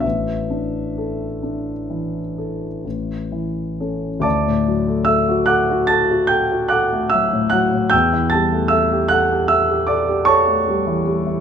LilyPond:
\new Staff \with { instrumentName = "Grand piano" } { \time 9/8 \key d \major \tempo 4. = 49 << { e''1 r8 | <d'' a'' d'''>4 <e'' e'''>8 <fis'' d''' fis'''>8 <a'' a'''>8 <g'' g'''>8 <fis'' d''' fis'''>8 <e'' e'''>8 <fis'' fis'''>8 | <g'' e''' g'''>8 <a'' a'''>8 <e'' e'''>8 <fis'' fis'''>8 <e'' e'''>8 <d'' d'''>8 <cis'' a'' cis'''>4. | } \\ { a,,8 d'8 a'8 d'8 e8 a'8 a,,8 e8 <cis' a'>8 | d,16 a,16 fis16 a16 a'16 fis'16 a'16 fis'16 a'16 fis'16 a'16 fis'16 a'16 a16 fis16 a,16 fis16 a,16 | e,16 e16 g16 a16 a'16 g'16 a'16 g'16 a'16 g'16 a'16 g'16 a'16 a16 g16 e16 g16 e16 | } >> }